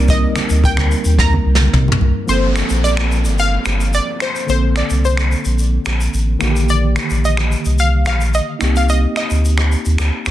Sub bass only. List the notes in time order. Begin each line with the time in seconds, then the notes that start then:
Already playing: C2
0.50 D2
1.05 D#2
1.46 C2
1.74 C3
2.01 C2
2.28 G1
2.70 A#1
3.25 G1
3.66 G1
4.49 A#1
4.91 C2
5.46 A#1
5.86 A#1
6.14 A1
6.42 A#1
7.11 A#1
7.66 C2
8.06 A#1
8.61 C2
9.31 D2
9.86 D#2
9.99 D2
10.27 D2